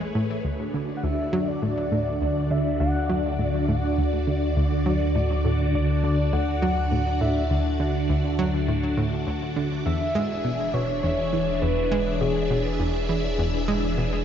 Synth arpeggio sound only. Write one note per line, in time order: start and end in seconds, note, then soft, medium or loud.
0.00 0.14 E3 loud
0.15 0.34 A2 medium
0.45 0.56 D2 medium
0.74 0.93 D3 medium
1.04 1.23 D2 loud
1.33 1.61 F#3 loud
1.62 1.82 A2 medium
1.92 2.20 A2 medium
2.21 2.33 D2 medium
2.51 2.70 D3 medium
2.80 2.99 D2 loud
3.09 3.37 F#3 loud
3.39 3.58 A2 medium
3.68 3.96 A2 medium
3.98 4.09 D2 medium
4.27 4.46 D3 medium
4.57 4.76 D2 loud
4.86 5.14 F#3 loud
5.15 5.35 A2 medium
5.45 5.73 A2 medium
5.74 5.86 D2 medium
6.04 6.23 D3 medium
6.33 6.52 D2 loud
6.62 6.90 F#3 loud
6.92 7.11 A2 medium
7.21 7.49 A2 medium
7.51 7.62 D2 medium
7.80 7.99 D3 medium
8.09 8.29 D2 loud
8.39 8.67 F#3 loud
8.68 8.87 A2 medium
8.98 9.25 A2 medium
9.27 9.38 D2 medium
9.56 9.76 D3 medium
9.86 10.05 E2 medium
10.15 10.43 G#3 loud
10.45 10.64 B2 medium
10.74 11.02 B2 medium
11.03 11.15 E2 medium
11.33 11.52 E3 medium
11.62 11.81 E2 loud
11.92 12.20 G#3 loud
12.21 12.40 B2 medium
12.50 12.78 B2 medium
12.80 12.91 E2 medium
13.09 13.28 E3 medium
13.39 13.58 E2 loud
13.68 13.96 G#3 loud
13.98 14.17 B2 medium